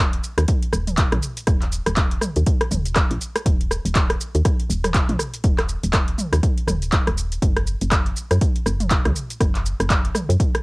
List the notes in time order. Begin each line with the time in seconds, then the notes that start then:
Already playing: D#1
0.13 closed hi-hat
0.24 shaker
0.38 D#2, cross-stick, closed hi-hat, shaker
0.48 kick, closed hi-hat, shaker
0.62 closed hi-hat
0.73 D#1, cross-stick, shaker
0.87 closed hi-hat, mid tom, shaker
0.98 kick, clap, closed hi-hat, shaker
1.12 A#1, cross-stick, closed hi-hat, mid tom
1.23 shaker
1.37 closed hi-hat, shaker
1.47 D#1, kick, cross-stick, closed hi-hat, shaker
1.62 clap, closed hi-hat
1.72 shaker
1.86 D#1, cross-stick, closed hi-hat, shaker
1.97 kick, clap, closed hi-hat, shaker
2.11 closed hi-hat
2.21 cross-stick, mid tom, shaker
2.36 D#2, closed hi-hat, shaker
2.47 kick, closed hi-hat, shaker
2.61 cross-stick, closed hi-hat
2.71 D#1, mid tom, shaker
2.86 closed hi-hat, shaker
2.96 kick, cross-stick, clap, closed hi-hat, shaker
3.11 A#1, closed hi-hat
3.21 shaker
3.36 cross-stick, closed hi-hat, shaker
3.46 D#1, kick, closed hi-hat, shaker
3.61 closed hi-hat
3.71 cross-stick, shaker
3.85 D#1, closed hi-hat, shaker
3.95 kick, clap, closed hi-hat, shaker
4.10 cross-stick, closed hi-hat
4.21 shaker
4.35 D#2, closed hi-hat, shaker
4.45 kick, cross-stick, closed hi-hat, shaker
4.60 closed hi-hat
4.70 D#1, shaker
4.84 cross-stick, closed hi-hat, mid tom, shaker
4.95 kick, clap, closed hi-hat, shaker
5.09 A#1, closed hi-hat, mid tom
5.19 cross-stick, shaker
5.34 closed hi-hat, shaker
5.44 D#1, kick, closed hi-hat, shaker
5.59 cross-stick, clap, closed hi-hat
5.69 shaker
5.84 D#1, closed hi-hat, shaker
5.93 kick, cross-stick, clap, closed hi-hat, shaker
6.08 closed hi-hat
6.18 mid tom, shaker
6.33 D#2, cross-stick, closed hi-hat, shaker
6.43 kick, closed hi-hat, shaker
6.58 closed hi-hat
6.67 D#1, cross-stick, mid tom, shaker
6.82 closed hi-hat, shaker
6.92 kick, clap, closed hi-hat, shaker
7.07 D#1, cross-stick, closed hi-hat
7.18 shaker
7.32 closed hi-hat, shaker
7.42 F#1, kick, closed hi-hat, shaker
7.57 cross-stick, closed hi-hat
7.67 shaker
7.81 F#1, closed hi-hat, shaker
7.92 kick, cross-stick, clap, closed hi-hat, shaker
8.06 closed hi-hat
8.17 shaker
8.31 F#2, cross-stick, closed hi-hat, shaker
8.41 kick, closed hi-hat, shaker
8.56 closed hi-hat
8.66 F#1, cross-stick, shaker
8.80 closed hi-hat, mid tom, shaker
8.91 kick, clap, closed hi-hat, shaker
9.05 C#2, cross-stick, closed hi-hat, mid tom
9.16 shaker
9.30 closed hi-hat, shaker
9.41 F#1, kick, cross-stick, closed hi-hat, shaker
9.55 clap, closed hi-hat
9.66 shaker
9.80 F#1, cross-stick, closed hi-hat, shaker
9.90 kick, clap, closed hi-hat, shaker
10.05 closed hi-hat
10.15 cross-stick, mid tom, shaker
10.29 F#2, closed hi-hat, shaker
10.40 kick, closed hi-hat, shaker
10.55 cross-stick, closed hi-hat